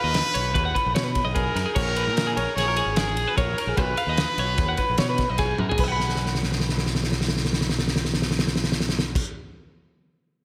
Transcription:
0.00 0.20 D#2 medium
0.00 1.11 B4 loud
0.00 0.24 D#5 medium
0.14 snare loud
0.14 ride medium
0.24 0.34 B4 medium
0.34 0.55 B1 medium
0.34 0.54 C#5 medium
0.34 ride medium
0.54 0.71 D#2 loud
0.54 0.65 B4 medium
0.54 kick loud
0.54 ride loud
0.65 0.75 F#5 medium
0.75 0.95 B4 medium
0.75 kick medium
0.75 ride medium
0.86 0.94 A#1 medium
0.95 1.19 B2 medium
0.95 1.04 C#5 medium
0.95 snare loud
0.95 ride loud
1.04 1.25 B4 medium
1.15 kick medium
1.15 ride medium
1.25 1.49 B1 medium
1.25 1.35 D#5 medium
1.34 1.55 G#4 medium
1.34 1.72 A#4 medium
1.34 kick loud
1.34 ride loud
1.55 1.64 F#2 loud
1.55 1.65 A#4 medium
1.55 snare soft
1.55 ride medium
1.66 1.76 G#4 medium
1.74 2.08 A#1 loud
1.74 2.52 A#4 loud
1.74 1.96 C#5 loud
1.74 kick loud
1.74 crash loud
1.96 2.05 B4 medium
1.96 ride medium
2.05 2.38 A#2 medium
2.05 2.26 A#4 medium
2.17 snare loud
2.17 ride loud
2.27 2.37 G#4 medium
2.37 2.45 A#1 loud
2.37 2.57 C#5 medium
2.37 ride medium
2.55 2.80 A#1 loud
2.55 2.67 G#4 medium
2.55 2.98 C#5 loud
2.55 snare soft
2.55 ride loud
2.68 2.77 A#4 medium
2.76 2.98 G#4 medium
2.76 ride medium
2.86 3.16 G#1 medium
2.96 3.37 G#4 medium
2.96 3.08 A#4 medium
2.96 snare loud
2.96 ride loud
3.08 3.28 G#4 medium
3.16 3.24 A#1 medium
3.16 ride medium
3.28 3.37 B4 medium
3.36 3.53 A#1 medium
3.36 3.78 A#4 medium
3.36 3.58 C#5 medium
3.36 kick loud
3.36 ride loud
3.58 3.69 A#4 medium
3.58 ride medium
3.67 3.75 A#1 loud
3.67 3.78 G#4 medium
3.76 3.93 B1 loud
3.76 5.39 B4 loud
3.76 3.99 B4 medium
3.76 kick loud
3.76 ride loud
3.97 4.09 F5 medium
3.97 ride medium
4.07 4.23 D#2 medium
4.07 4.29 D#5 medium
4.17 snare loud
4.17 ride loud
4.29 4.39 B4 medium
4.38 4.58 B1 medium
4.38 4.60 C#5 medium
4.38 ride medium
4.58 4.74 D#2 medium
4.58 4.68 B4 medium
4.58 kick loud
4.58 snare soft
4.58 ride loud
4.69 4.79 F#5 medium
4.77 4.98 B4 medium
4.77 kick medium
4.77 ride medium
4.89 4.97 A#1 medium
4.98 5.23 B2 loud
4.98 5.09 C#5 medium
4.98 snare loud
4.98 ride loud
5.09 5.29 B4 medium
5.18 kick medium
5.18 snare soft
5.18 ride medium
5.29 5.53 B1 medium
5.29 5.40 D#5 medium
5.38 5.59 G#4 medium
5.38 kick loud
5.38 snare soft
5.38 ride loud
5.58 5.68 F#2 loud
5.58 5.69 A#4 medium
5.58 high tom medium
5.69 5.80 G#4 medium
5.69 floor tom loud
5.78 9.19 B1 loud
5.78 5.84 B4 medium
5.78 kick loud
5.78 crash medium
5.84 5.88 D#5 medium
5.88 9.27 F#5 medium
5.92 9.25 B5 medium
6.00 snare soft
6.09 snare soft
6.15 snare soft
6.26 snare soft
6.35 snare medium
6.43 snare medium
6.52 snare medium
6.60 snare medium
6.69 snare medium
6.78 snare medium
6.86 snare medium
6.95 snare medium
7.03 snare medium
7.12 snare medium
7.21 snare medium
7.28 snare medium
7.36 snare medium
7.45 snare medium
7.53 snare medium
7.61 snare medium
7.69 snare medium
7.79 snare medium
7.88 snare medium
7.96 snare medium
8.05 snare medium
8.13 snare medium
8.22 snare medium
8.31 snare medium
8.39 snare loud
8.47 snare medium
8.56 snare medium
8.64 snare medium
8.72 snare loud
8.80 snare medium
8.89 snare medium
8.99 snare loud
9.15 kick loud
9.15 crash loud

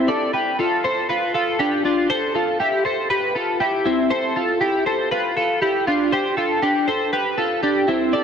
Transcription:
0.08 0.34 A4 medium
0.08 0.33 D5 medium
0.33 0.59 G4 soft
0.33 0.58 B4 medium
0.59 0.84 F4 soft
0.59 0.84 A4 medium
0.84 1.10 A4 medium
0.84 1.09 C5 medium
1.09 1.34 F4 medium
1.09 1.34 B4 medium
1.34 1.59 F4 medium
1.34 1.59 A4 medium
1.59 1.84 D4 medium
1.59 1.84 G4 medium
1.85 2.10 D4 soft
1.85 2.10 F4 medium
2.10 2.34 A4 medium
2.10 2.35 C5 medium
2.35 2.60 F4 medium
2.35 2.60 A4 medium
2.60 2.85 E4 medium
2.60 2.85 G4 medium
2.85 3.11 A4 medium
2.85 3.10 C5 medium
3.10 3.35 G4 medium
3.10 3.35 B4 medium
3.35 3.61 F4 soft
3.35 3.60 A4 medium
3.60 3.84 E4 soft
3.60 3.86 G4 medium
3.85 4.11 C4 medium
3.85 4.11 E4 medium
4.10 4.35 A4 medium
4.10 4.36 C5 medium
4.36 4.62 F4 medium
4.36 4.60 A4 medium
4.61 4.86 E4 medium
4.61 4.86 G4 medium
4.86 5.12 A4 medium
4.86 5.11 C5 medium
5.11 5.36 F4 medium
5.11 5.36 B4 medium
5.37 5.61 F4 medium
5.37 5.62 A4 medium
5.62 5.87 E4 medium
5.62 5.87 G4 medium
5.87 6.13 D4 medium
5.87 6.12 F4 medium
6.12 6.37 G4 medium
6.12 6.37 C5 medium
6.37 6.62 F4 medium
6.37 6.62 A4 medium
6.62 6.88 D4 medium
6.62 6.88 G4 medium
6.88 7.13 A4 medium
6.88 7.12 C5 medium
7.13 7.37 G4 medium
7.13 7.38 B4 medium
7.38 7.63 F4 medium
7.38 7.62 A4 medium
7.63 7.88 D4 medium
7.63 7.88 G4 medium
7.88 8.14 C4 medium
7.88 8.13 E4 medium
8.13 8.24 A4 medium
8.13 8.24 D5 medium

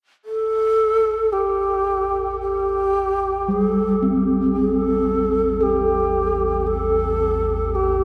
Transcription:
0.24 8.04 A1 medium
0.24 8.04 E2 medium
0.24 1.34 A4 loud
1.32 2.40 G4 medium
2.41 3.53 G4 medium
3.48 8.04 G3 medium
3.48 3.65 G#4 medium
3.65 4.30 A4 medium
4.02 8.04 C4 medium
4.55 4.72 G#4 medium
4.72 5.64 A4 medium
5.61 6.68 G4 medium
5.61 8.04 A4 medium
6.67 7.76 A4 medium
7.75 8.04 G4 medium

